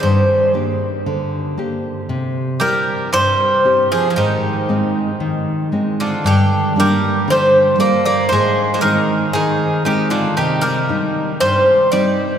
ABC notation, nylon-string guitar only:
X:1
M:4/4
L:1/8
Q:1/4=116
K:Gphr
V:1 name="Nylon-string guitar"
G,,2 [B,DG]2 D,2 [B,DG]2 | C,2 [C=EG]2 G,,2 [CEG]2 | A,,2 [A,CE]2 E,2 [A,CE]2 | G,,2 [G,B,D]2 D,2 [G,B,D]2 |
A,,2 [A,CE]2 E,2 [A,CE]2 | C,2 [G,CE]2 G,,2 [G,CE]2 |]